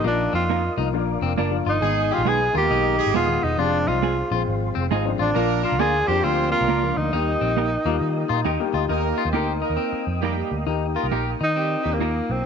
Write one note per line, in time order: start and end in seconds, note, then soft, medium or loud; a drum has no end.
0.00 0.91 D#5 medium
0.00 0.91 D#6 medium
0.04 0.27 A#1 loud
0.04 0.52 F3 medium
0.04 0.23 A#3 medium
0.04 0.53 A#3 medium
0.04 0.32 D4 loud
0.04 0.53 D#4 medium
0.04 0.53 F4 medium
0.04 1.81 A#4 medium
0.33 0.68 F2 medium
0.33 0.43 C4 medium
0.33 0.75 F4 medium
0.49 0.62 A#3 medium
0.49 0.62 D#4 medium
0.49 0.63 F4 medium
0.49 0.63 A#4 loud
0.77 0.93 C2 medium
0.77 0.92 F3 medium
0.77 0.92 A#3 medium
0.77 0.88 D#4 medium
0.77 0.93 D#4 medium
0.77 0.93 F4 medium
0.93 1.16 A#1 loud
0.93 1.38 F3 medium
0.93 1.38 A#3 medium
0.93 1.38 D4 medium
0.93 1.38 F4 medium
0.93 1.81 D5 medium
0.93 1.81 D6 medium
1.22 1.34 F1 medium
1.22 1.33 C4 medium
1.38 1.60 F#1 medium
1.38 1.50 A#3 medium
1.38 1.57 D4 medium
1.38 1.51 D4 medium
1.38 1.51 F4 medium
1.38 1.51 A#4 medium
1.51 1.74 F3 medium
1.51 1.75 A#3 medium
1.51 1.75 D4 medium
1.51 1.75 F4 medium
1.66 1.78 G1 loud
1.66 2.15 D#4 medium
1.66 1.77 F4 medium
1.81 2.10 G#1 loud
1.81 2.30 D#3 medium
1.81 2.23 G#3 loud
1.81 2.30 G#3 medium
1.81 2.30 B3 medium
1.81 2.30 D#4 medium
1.81 2.23 G#4 loud
1.81 2.01 G#4 medium
1.81 3.57 D#5 medium
1.81 3.57 D#6 medium
2.11 2.30 F4 loud
2.11 2.21 G4 medium
2.18 2.24 A#1 medium
2.25 2.48 B1 medium
2.25 2.38 G#3 medium
2.25 2.48 B3 medium
2.25 2.39 B3 medium
2.25 2.39 D#4 medium
2.25 2.45 G#4 medium
2.25 2.39 G#4 loud
2.25 2.56 G#4 loud
2.25 2.48 B4 loud
2.53 2.67 D#2 medium
2.53 3.06 D#3 medium
2.53 3.06 G#3 medium
2.53 2.58 A#3 soft
2.53 2.96 A#3 loud
2.53 3.06 D#4 medium
2.53 2.65 F4 medium
2.53 2.96 A#4 loud
2.57 3.09 B3 medium
2.57 3.12 G4 loud
2.70 2.99 B1 loud
2.70 3.12 D#4 medium
2.98 3.40 G#3 medium
2.98 3.40 G#4 loud
3.06 3.13 G#1 medium
3.14 3.37 D#1 loud
3.14 3.27 G#3 medium
3.14 3.27 B3 medium
3.14 3.56 B3 medium
3.14 3.28 D#4 medium
3.14 3.45 F4 loud
3.14 3.28 G#4 medium
3.27 3.51 D#3 medium
3.27 3.51 G#3 medium
3.27 3.52 B3 medium
3.27 3.52 D#4 medium
3.44 3.56 E1 medium
3.44 3.61 D#4 medium
3.58 3.88 F1 loud
3.58 4.06 F3 medium
3.58 3.65 G3 medium
3.58 4.07 C4 medium
3.58 3.89 D4 loud
3.58 3.78 F4 medium
3.58 4.07 F4 medium
3.58 5.34 G#4 medium
3.58 5.34 C5 medium
3.58 7.09 F5 medium
3.58 5.34 C6 medium
3.64 4.09 G#3 medium
3.87 4.21 C2 medium
3.87 3.98 D#4 medium
3.87 4.32 F4 medium
4.02 4.15 G#3 medium
4.02 4.16 C4 medium
4.02 4.16 F4 loud
4.02 4.16 G#4 loud
4.31 4.44 A#1 medium
4.31 4.83 F3 medium
4.31 4.83 G#3 medium
4.31 4.83 C4 medium
4.31 4.42 F4 medium
4.31 4.84 F4 medium
4.48 4.70 G#1 medium
4.75 4.88 F1 loud
4.75 4.86 C4 medium
4.91 5.14 G#1 loud
4.91 5.04 G#3 medium
4.91 5.04 C4 medium
4.91 5.10 D#4 medium
4.91 5.05 F4 loud
4.91 5.05 G#4 loud
5.05 5.29 F3 medium
5.05 5.29 G#3 medium
5.05 5.29 C4 medium
5.05 5.29 D4 medium
5.19 5.32 A1 loud
5.19 5.62 D4 medium
5.19 5.30 F4 medium
5.34 5.64 A#1 loud
5.34 5.84 F3 medium
5.34 5.54 A#3 medium
5.34 5.77 A#3 loud
5.34 5.84 A#3 medium
5.34 5.84 D4 medium
5.34 5.84 F4 medium
5.34 5.77 A#4 loud
5.34 7.11 A#4 medium
5.34 7.11 D5 medium
5.34 7.11 D6 medium
5.63 5.74 D4 medium
5.63 5.81 F4 loud
5.72 5.79 C2 medium
5.79 6.01 D2 medium
5.79 5.93 A#3 loud
5.79 6.02 D4 medium
5.79 5.93 D4 medium
5.79 5.98 F4 medium
5.79 5.93 F4 loud
5.79 6.09 G#4 loud
5.79 5.93 A#4 loud
5.79 6.02 D5 loud
6.07 6.20 F2 medium
6.07 6.60 F3 medium
6.07 6.61 A#3 medium
6.07 6.50 C4 loud
6.07 6.18 D4 medium
6.07 6.61 D4 medium
6.07 6.26 G4 loud
6.07 6.61 G4 medium
6.07 6.50 C5 loud
6.24 6.53 D2 medium
6.24 6.65 C4 medium
6.24 6.51 F4 loud
6.51 6.94 A#3 medium
6.51 6.98 F4 loud
6.51 6.94 A#4 loud
6.61 6.67 C2 medium
6.68 6.91 C#2 loud
6.68 6.81 A#3 medium
6.68 7.10 A#3 medium
6.68 6.81 D4 medium
6.68 6.82 F4 medium
6.68 6.82 A#4 medium
6.82 7.06 F3 medium
6.82 7.06 A#3 medium
6.82 7.06 D4 medium
6.82 7.06 F4 medium
6.97 7.09 D2 loud
6.97 8.45 D#4 medium
7.13 7.35 D#2 loud
7.13 7.61 G3 medium
7.13 7.61 A#3 medium
7.13 7.32 D#4 medium
7.13 7.61 D#4 medium
7.13 7.61 G4 medium
7.13 8.88 A#4 medium
7.13 8.88 D#5 medium
7.13 8.88 G5 medium
7.13 8.88 D#6 medium
7.41 7.76 A#1 medium
7.41 7.51 C4 medium
7.57 7.69 A#3 medium
7.57 7.70 D#4 medium
7.57 7.70 G4 loud
7.57 7.70 A#4 loud
7.85 7.98 D#2 medium
7.85 8.37 G3 medium
7.85 7.96 A#3 medium
7.85 8.37 A#3 medium
7.85 8.37 D#4 medium
7.85 8.38 F4 medium
8.01 8.23 D#3 loud
8.29 8.42 A#2 medium
8.29 8.40 F4 medium
8.29 8.44 A#5 medium
8.45 8.56 D#2 medium
8.45 8.58 A#3 medium
8.45 8.64 D#4 medium
8.45 8.58 D#4 medium
8.45 8.58 G4 loud
8.45 8.58 A#4 medium
8.45 8.72 G5 medium
8.59 8.83 G3 medium
8.59 8.83 A#3 medium
8.59 8.83 D#4 medium
8.59 8.83 G4 loud
8.74 8.86 D2 loud
8.74 8.84 F4 medium
8.74 8.89 D#5 medium
8.89 9.12 D#2 loud
8.89 9.24 A#3 medium
8.89 9.24 A#3 loud
8.89 9.08 D#4 medium
8.89 9.25 D#4 medium
8.89 9.25 G4 medium
8.89 9.24 A#4 loud
8.89 10.65 A#4 medium
8.89 10.66 D#5 medium
8.89 10.66 G5 medium
8.89 10.65 D#6 medium
9.18 9.28 F4 medium
9.25 9.32 D#2 loud
9.25 9.32 C4 medium
9.25 9.32 C5 medium
9.33 9.62 D2 medium
9.33 9.46 A#3 medium
9.33 10.02 A#3 medium
9.33 9.57 C4 medium
9.33 10.02 D#4 medium
9.33 9.47 D#4 medium
9.33 9.52 G4 medium
9.33 9.47 G4 medium
9.33 10.03 A#4 medium
9.33 9.47 A#4 medium
9.33 9.56 C5 medium
9.62 10.04 A#3 medium
9.62 9.72 D#4 medium
9.62 10.04 A#4 medium
9.70 9.76 D#2 medium
9.77 10.19 C4 medium
9.92 muted picked electric bass stroke soft
10.07 10.41 F2 medium
10.21 10.56 G3 medium
10.21 10.64 A#3 medium
10.21 10.35 A#3 medium
10.21 10.35 D#4 medium
10.21 10.56 G4 medium
10.21 10.36 G4 medium
10.21 10.36 A#4 medium
10.51 10.64 D2 medium
10.66 10.95 D#2 loud
10.66 11.35 A#3 medium
10.66 10.86 D#4 medium
10.66 11.35 D#4 medium
10.66 11.36 G4 medium
10.66 12.43 A#4 medium
10.66 12.46 G5 medium
10.66 12.43 D#6 medium
10.94 11.37 A#3 medium
10.94 11.06 F4 medium
10.94 11.37 A#4 medium
11.04 11.10 C2 medium
11.12 11.34 A#1 medium
11.12 11.24 A#3 medium
11.12 11.24 D#4 medium
11.12 11.30 G4 medium
11.12 11.25 G4 medium
11.12 11.25 A#4 medium
11.41 11.75 D#3 medium
11.41 11.51 D#4 medium
11.41 11.95 D#4 medium
11.55 11.78 G3 medium
11.55 11.98 C4 medium
11.55 11.79 G4 medium
11.83 12.20 D#2 medium
11.83 11.96 G3 medium
11.83 11.95 A#3 medium
11.83 11.95 D#4 medium
11.83 11.96 G4 medium
11.94 12.33 A#3 medium
11.99 12.35 A#3 medium
11.99 12.42 A#3 medium
11.99 12.13 A#3 medium
11.99 12.35 D#4 medium
11.99 12.13 D#4 medium
11.99 12.35 F4 medium
11.99 12.14 G4 medium
11.99 12.14 A#4 medium
12.30 12.42 B1 medium
12.30 12.46 C4 medium